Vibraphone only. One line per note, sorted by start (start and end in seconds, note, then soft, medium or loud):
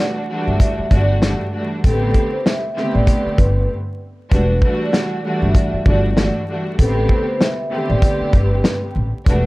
0.00 0.44 F#5 medium
0.47 0.89 E5 medium
0.91 1.19 D5 medium
1.84 2.30 A4 loud
2.32 2.44 C5 medium
2.45 2.91 E5 medium
2.93 3.35 D5 medium
3.39 3.68 B4 medium
4.31 4.77 B4 loud
4.79 4.92 D5 medium
4.92 5.38 F#5 medium
5.42 5.84 E5 medium
5.86 6.14 D5 medium
6.79 7.24 A4 loud
7.27 7.39 C5 medium
7.41 7.87 E5 medium
7.88 8.30 D5 medium
8.33 8.79 B4 medium
9.27 9.46 B4 medium